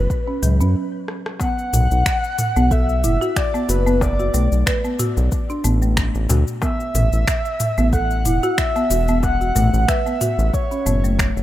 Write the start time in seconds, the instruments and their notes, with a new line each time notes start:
Already playing: soft synth lead B4
0.10 kick, cabasa
0.28 marimba C#4
0.43 analog synth bass C#2, marimba F#3, mid tom, open hi-hat, cabasa
0.60 analog synth bass F#2, marimba C#4, cabasa
1.08 cross-stick
1.26 cross-stick
1.40 marimba B3, soft synth lead F#5, kick, darbuka ka, darbuka tek, cabasa
1.59 cabasa
1.73 analog synth bass B1, mid tom, open hi-hat, darbuka dum, cabasa
1.91 analog synth bass B1, cabasa
2.06 finger snap, kick, cabasa
2.24 cabasa
2.38 mid tom, open hi-hat, darbuka ka, cabasa
2.56 analog synth bass B1, marimba B3, darbuka tek, cabasa
2.71 marimba A4, soft synth lead E5, kick, cabasa
2.89 cabasa
3.04 analog synth bass F#1, marimba E4, mid tom, open hi-hat, cabasa
3.21 marimba F#4, darbuka ka, cabasa
3.36 soft synth lead D5, finger snap, kick, cabasa
3.54 marimba B3, cabasa
3.69 analog synth bass F#1, marimba F#4, soft synth lead B4, open hi-hat, darbuka ka, cabasa
3.87 marimba B3, cabasa
4.01 soft synth lead D5, kick, darbuka ka, darbuka tek, cabasa
4.19 marimba F#4, cabasa
4.34 analog synth bass B1, marimba A3, open hi-hat, cabasa
4.52 analog synth bass B1, cabasa
4.66 marimba B4, finger snap, kick, cabasa
4.84 marimba B3, cabasa
4.99 marimba F#4, mid tom, open hi-hat, darbuka ka, cabasa
5.17 analog synth bass B1, darbuka tek, cabasa
5.32 kick, cabasa
5.50 marimba D4, cabasa
5.64 analog synth bass A1, marimba B3, mid tom, open hi-hat, cabasa
5.82 marimba A3, cabasa
5.97 finger snap, kick, cabasa
6.15 analog synth bass A1, cabasa
6.29 analog synth bass D2, marimba F#4, open hi-hat, darbuka ka, darbuka tek, darbuka dum, cabasa
6.48 cabasa
6.62 marimba B3, soft synth lead E5, kick, darbuka ka, darbuka tek, cabasa
6.80 cabasa
6.95 analog synth bass A1, mid tom, open hi-hat, darbuka dum, cabasa
7.13 analog synth bass A1, cabasa
7.28 finger snap, kick, cabasa
7.45 cabasa
7.60 mid tom, open hi-hat, darbuka ka, cabasa
7.78 analog synth bass A1, marimba B3, darbuka tek, cabasa
7.93 marimba A4, soft synth lead F#5, kick, cabasa
8.11 cabasa
8.25 analog synth bass E1, marimba E4, mid tom, open hi-hat, cabasa
8.43 marimba F#4, darbuka ka, cabasa
8.58 soft synth lead E5, finger snap, kick, cabasa
8.76 marimba B3, cabasa
8.90 analog synth bass E1, marimba F#4, open hi-hat, darbuka ka, cabasa
9.08 marimba B3, cabasa
9.23 soft synth lead F#5, kick, darbuka ka, darbuka tek, cabasa
9.41 marimba F#4, cabasa
9.55 analog synth bass A1, marimba A3, mid tom, open hi-hat, darbuka dum, cabasa
9.73 analog synth bass A1, cabasa
9.88 marimba B4, soft synth lead E5, finger snap, kick, cabasa
10.06 marimba B3, cabasa
10.21 marimba F#4, mid tom, open hi-hat, darbuka ka, cabasa
10.38 analog synth bass A1, darbuka tek, cabasa
10.54 soft synth lead C#5, kick, cabasa
10.71 marimba C#4, cabasa
10.86 analog synth bass F#1, marimba B3, mid tom, open hi-hat, cabasa
11.04 marimba A3, cabasa
11.19 finger snap, kick, cabasa
11.36 analog synth bass F#1, cabasa